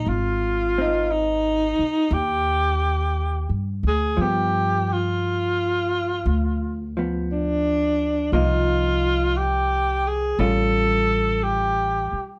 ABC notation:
X:1
M:4/4
L:1/16
Q:"Swing" 1/4=58
K:Gphr
V:1 name="Alto saxophone"
F4 E4 G4- G z A2 | G2 F8 z2 D4 | F4 G2 A2 =A4 G3 z |]
V:2 name="Hollow-body jazz guitar"
z2 [CE]12- [CE]2 | [F,=B,]8- [F,B,]2 [F,B,]6 | [F,B,E]8 [G,^CF]8 |]
V:3 name="Upright bass" clef=bass
A,,,6 z2 E,,4- (3E,,2 G,,2 D,,2 | G,,8 D,,8 | C,,8 =A,,,6 z2 |]